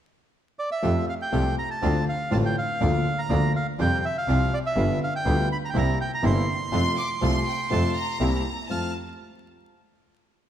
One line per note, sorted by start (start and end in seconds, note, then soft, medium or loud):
0.59 0.70 D5 medium
0.72 1.06 E5 medium
0.82 1.04 F2 medium
0.82 1.03 F3 medium
0.82 1.03 A3 soft
0.82 1.03 A3 medium
0.82 1.03 C4 soft
0.82 1.03 F4 soft
0.82 1.03 G4 medium
0.82 1.04 G4 medium
1.09 1.14 F5 medium
1.22 1.56 G5 medium
1.32 1.53 C2 medium
1.32 1.53 C3 medium
1.32 1.53 F3 medium
1.32 1.53 A3 medium
1.32 1.53 A3 soft
1.32 1.53 C4 soft
1.32 1.53 F4 soft
1.32 1.53 G4 medium
1.59 1.69 A#5 medium
1.71 2.05 A5 medium
1.81 2.03 D2 medium
1.81 2.03 D3 medium
1.81 2.03 A3 soft
1.81 2.02 C4 medium
1.81 2.03 C4 soft
1.81 2.03 D4 medium
1.81 2.03 F4 medium
2.09 2.33 F5 medium
2.30 2.52 A1 medium
2.30 2.52 A2 medium
2.30 2.52 D3 medium
2.30 2.52 A3 soft
2.30 2.52 C4 medium
2.30 2.52 D4 medium
2.30 2.52 F4 medium
2.30 2.38 A5 medium
2.46 2.56 G5 medium
2.58 3.20 F5 medium
2.80 3.01 D2 medium
2.80 3.02 D2 medium
2.80 3.01 D3 medium
2.80 3.01 F3 soft
2.80 3.01 A#3 medium
2.80 3.01 D4 soft
2.80 3.01 F4 medium
3.19 3.52 A#5 medium
3.29 3.50 D2 medium
3.29 3.51 D2 medium
3.29 3.51 D3 medium
3.29 3.50 F3 medium
3.29 3.50 A#3 medium
3.29 3.51 A#3 medium
3.29 3.50 D4 soft
3.29 3.50 F4 medium
3.29 3.51 F4 medium
3.56 3.67 F5 medium
3.78 3.99 F2 medium
3.78 4.00 F2 medium
3.78 4.00 C3 medium
3.78 4.00 F3 medium
3.78 3.99 G3 medium
3.78 4.00 G3 medium
3.78 3.99 C4 medium
3.78 3.99 F4 medium
3.78 4.00 F4 medium
3.78 4.05 G5 medium
4.05 4.17 E5 medium
4.18 4.55 F5 medium
4.28 4.48 C2 medium
4.28 4.49 C2 medium
4.28 4.49 C3 medium
4.28 4.49 F3 medium
4.28 4.48 G3 medium
4.28 4.49 G3 medium
4.28 4.48 C4 medium
4.28 4.48 F4 medium
4.28 4.49 F4 medium
4.54 4.59 D5 medium
4.66 5.00 E5 medium
4.76 4.97 G1 medium
4.76 4.97 G2 medium
4.76 4.97 D3 medium
4.76 4.97 G3 soft
4.76 4.97 G3 medium
4.76 4.97 B3 soft
4.76 4.97 B3 medium
4.76 4.97 F4 medium
5.04 5.14 F5 medium
5.16 5.49 G5 medium
5.25 5.46 D2 medium
5.25 5.46 D3 medium
5.25 5.46 G3 medium
5.25 5.46 B3 medium
5.25 5.46 B3 soft
5.25 5.46 F4 medium
5.52 5.57 B5 medium
5.65 5.70 A#5 medium
5.70 5.95 C3 medium
5.70 5.77 G5 medium
5.74 5.95 C2 medium
5.74 5.95 G3 medium
5.74 5.95 A#3 medium
5.74 5.95 C4 medium
5.74 5.95 E4 medium
5.78 5.99 A#5 medium
6.01 6.12 G5 medium
6.14 6.24 A#5 medium
6.22 6.44 G1 medium
6.22 6.44 G2 medium
6.22 6.44 C3 medium
6.22 6.44 G3 medium
6.22 6.44 A#3 medium
6.22 6.44 C4 medium
6.22 6.44 E4 medium
6.22 8.18 C6 medium
6.72 6.93 F2 medium
6.72 6.93 C3 medium
6.72 6.93 F3 medium
6.72 6.93 A3 medium
6.72 6.93 C4 medium
6.72 6.93 F4 medium
6.72 6.96 C6 medium
6.97 7.08 D6 medium
7.21 7.42 C2 medium
7.21 7.42 C3 medium
7.21 7.42 F3 medium
7.21 7.42 A3 medium
7.21 7.42 C4 medium
7.21 7.42 F4 medium
7.21 7.45 C6 medium
7.47 7.70 G5 medium
7.70 7.92 F2 medium
7.70 7.91 C3 medium
7.70 7.92 F3 medium
7.70 7.91 A3 medium
7.70 7.92 A3 soft
7.70 7.91 C4 medium
7.70 7.92 F4 medium
7.70 7.94 A5 medium
7.95 8.66 A#5 medium
8.20 8.41 C2 medium
8.20 8.41 C3 medium
8.20 8.41 G3 medium
8.20 8.41 A#3 medium
8.20 8.41 C4 medium
8.20 8.41 E4 medium
8.69 8.90 F2 soft
8.69 8.91 F2 soft
8.69 8.90 A3 soft
8.69 8.90 C4 soft
8.69 8.90 F4 soft
8.69 8.92 A5 medium
8.69 8.93 F6 medium